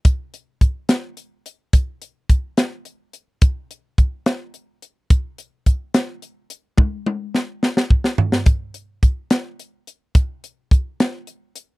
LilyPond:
\new DrumStaff \with { instrumentName = "Drums" } \drummode { \time 6/8 \tempo 4. = 71 <hh bd>8 hh8 <hh bd>8 <hh sn>8 hh8 hh8 | <hh bd>8 hh8 <hh bd>8 <hh sn>8 hh8 hh8 | <hh bd>8 hh8 <hh bd>8 <hh sn>8 hh8 hh8 | <hh bd>8 hh8 <hh bd>8 <hh sn>8 hh8 hh8 |
<bd tommh>8 tommh8 sn8 sn16 sn16 bd16 sn16 tomfh16 sn16 | <hh bd>8 hh8 <hh bd>8 <hh sn>8 hh8 hh8 | <hh bd>8 hh8 <hh bd>8 <hh sn>8 hh8 hh8 | }